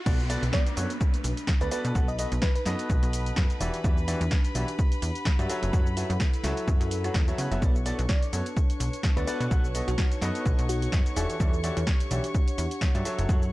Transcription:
0.06 B1 B3 D4 F#4 A4 B4 D5 B5, kick, crash, downlifter, cabasa
0.19 cabasa
0.30 B3 F#4 A4 B4 D5, open hi-hat, cabasa
0.43 B1, closed hi-hat, cabasa
0.53 D5, kick, snare, cabasa
0.63 B4, closed hi-hat
0.67 cabasa
0.77 F#2 B3 F#4 A4 B4 C#5, open hi-hat, cabasa
0.90 A5, closed hi-hat, cabasa
1.01 kick, cabasa
1.14 closed hi-hat, cabasa
1.24 B1, open hi-hat, cabasa
1.37 closed hi-hat, cabasa
1.47 kick, snare, cabasa
1.61 D2 B3 F#4 A4 B4 D5, closed hi-hat, cabasa
1.71 B3 F#4 A4 B4 D5, open hi-hat, cabasa
1.85 B2, closed hi-hat, cabasa
1.95 B1 B3 D#4 F#4 A4 B4 F#5, kick, cabasa
2.08 D#5, cabasa
2.19 B3 F#4 A4 B4 D#5, open hi-hat, cabasa
2.32 B1, closed hi-hat, cabasa
2.42 B4, kick, snare, cabasa
2.56 B4, closed hi-hat, cabasa
2.65 F#2 B3 F#4 A4 B4 D#5, snare, open hi-hat, cabasa
2.79 closed hi-hat, cabasa
2.90 B1, kick, cabasa
3.03 B1, closed hi-hat, cabasa
3.13 open hi-hat, cabasa
3.26 closed hi-hat, cabasa
3.36 F#2, kick, snare, cabasa
3.50 closed hi-hat, cabasa
3.60 E1 E3 D4 F#4 G4 D5 E5, open hi-hat, cabasa
3.74 closed hi-hat, cabasa
3.84 E2 E3 F#4 G4 D5 E5, kick, cabasa
3.98 cabasa
4.08 E3 F#4 G4 D5 E5, open hi-hat, cabasa
4.21 E2, closed hi-hat, cabasa
4.31 kick, snare, cabasa
4.35 F#5
4.45 closed hi-hat, cabasa
4.55 B1 E3 F#4 G4 D5 E5, open hi-hat, cabasa
4.68 closed hi-hat, cabasa
4.79 kick, cabasa
4.92 closed hi-hat, cabasa
5.02 E2, open hi-hat, cabasa
5.15 closed hi-hat, cabasa
5.25 kick, snare, cabasa
5.39 G2 F#3 F#4 G4 D5 E5, closed hi-hat, cabasa
5.50 F#3 E4 F#4 A4 C#5 E5, open hi-hat, cabasa
5.63 F#1, closed hi-hat, cabasa
5.69 A4
5.73 F#2 F#3 F#4 A4 C#5 F#5, kick, cabasa
5.87 cabasa
5.97 F#3 F#4 A4 C#5 E5, open hi-hat, cabasa
6.10 F#2, closed hi-hat, cabasa
6.20 kick, snare, cabasa
6.34 closed hi-hat, cabasa
6.44 C#2 F#3 F#4 A4 C#5 E5, snare, open hi-hat, cabasa
6.57 closed hi-hat, cabasa
6.68 F#2, kick, cabasa
6.81 F#2, closed hi-hat, cabasa
6.91 open hi-hat, cabasa
7.04 F#3 F#4 A4 C#5 F#5, cross-stick, closed hi-hat, cabasa
7.14 E2, kick, snare, cabasa
7.28 F#3 F#4 A4 C#5 E5, closed hi-hat, cabasa
7.38 C#3 B3 F#4 A4 C#5 F#5, open hi-hat, cabasa
7.51 F#1 B3 F#4 A4 C#5 E5, closed hi-hat, cabasa
7.62 B1 B3 D4 F#4 A4 B4 C#5 D5 C#6, kick, cabasa
7.75 cabasa
7.80 A5
7.86 B3 F#4 A4 B4 D5, open hi-hat, cabasa
7.90 B4
7.99 B1, closed hi-hat, cabasa
8.09 D5, kick, snare, cabasa
8.23 closed hi-hat, cabasa
8.33 F#2 B3 F#4 A4 B4 C#5, open hi-hat, cabasa
8.46 closed hi-hat, cabasa
8.57 kick, cabasa
8.70 closed hi-hat, cabasa
8.80 B1, open hi-hat, cabasa
8.93 closed hi-hat, cabasa
9.03 kick, snare, cabasa
9.17 D2 B3 F#4 A4 B4 D5, closed hi-hat, cabasa
9.27 B3 F#4 A4 B4 D5, open hi-hat, cabasa
9.40 B2, closed hi-hat, cabasa
9.51 B1 B3 D#4 F#4 A4 B4 F#5, kick, cabasa
9.64 cabasa
9.75 B3 F#4 A4 B4 D#5, open hi-hat, cabasa
9.88 B1 F#4, closed hi-hat, cabasa
9.98 F#4, kick, snare, cabasa
10.12 closed hi-hat, cabasa
10.21 F#2 B3 F#4 A4 B4 D#5, snare, open hi-hat, cabasa
10.35 closed hi-hat, cabasa
10.46 B1, kick, cabasa
10.59 B1, closed hi-hat, cabasa
10.69 F#4, open hi-hat, cabasa
10.82 F#4, closed hi-hat, cabasa
10.92 F#2, kick, snare, cabasa
11.06 closed hi-hat, cabasa
11.16 E1 E3 D4 F#4 G4 A4 D5 E5, open hi-hat, cabasa
11.30 closed hi-hat, cabasa
11.39 E2 E3 F#4 G4 D5 E5, kick, cabasa
11.53 cabasa
11.64 E3 F#4 G4 D5 E5, open hi-hat, cabasa
11.77 E2, closed hi-hat, cabasa
11.86 F#5, kick, snare, cabasa
12.00 closed hi-hat, cabasa
12.11 B1 E3 F#4 G4 D5 E5, open hi-hat, cabasa
12.24 closed hi-hat, cabasa
12.35 kick, cabasa
12.48 closed hi-hat, cabasa
12.58 E2, open hi-hat, cabasa
12.71 closed hi-hat, cabasa
12.81 kick, snare, cabasa
12.95 G2 F#3 F#4 G4 D5 E5, closed hi-hat, cabasa
13.05 F#3 E4 F#4 A4 C#5 E5, open hi-hat, cabasa
13.18 F#1, closed hi-hat, cabasa
13.28 F#2 F#3 F#4 A4 C#5 F#5, kick, cabasa
13.42 cabasa

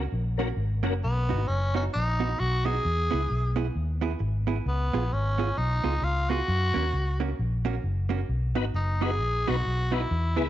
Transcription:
0.12 A#1
0.38 A#3 C#4 F#4 A#4
0.57 G#1
0.83 F#1 A#3 C#4 F#4 A#4
1.04 B1 B3
1.29 G#1 B3 D#4 F#4
1.48 F#1 C#4
1.75 B3 C#4 D#4 F#4
1.93 A#1 D#4
2.20 B3 D#4 F#4
2.37 B1 F#4, muted hollow-body jazz guitar stroke
2.65 B3 D#4 F#4 G#4
2.85 E2
3.11 C#2 B3 E4 G#4
3.31 B1
3.56 B3 E4 G#4
3.76 D#2
4.01 B3 E4 G#4
4.19 G#1, muted hollow-body jazz guitar stroke
4.47 B3 E4 G#4
4.66 C#2 B3
4.93 A#1 B3 F4 G#4
5.13 G#1 C#4
5.38 B3 F4 G#4
5.58 B1 D#4
5.84 C#2 B3 F4 G#4
6.02 C#2 F4, muted hollow-body jazz guitar stroke
6.30 B3 F4 F#4 G#4
6.48 F#2
6.74 D#2 A#3 C#4 F#4
6.93 C#2
7.20 A#3 C#4 F#4
7.39 A#1
7.65 A#3 C#4 F#4
7.84 F#1
8.09 A#3 C#4 F#4
8.29 B1
8.55 G#1 B3 D#4 F#4 B4
8.74 F#1 D#4
9.01 B3 D#4 F#4 G#4 B4
9.20 A#1
9.47 B1 B3 D#4 F#4 B4
9.65 B1, muted hollow-body jazz guitar stroke
9.91 B3 D#4 E4 F#4 B4
10.11 E2
10.36 C#2 B3 E4 G#4 B4

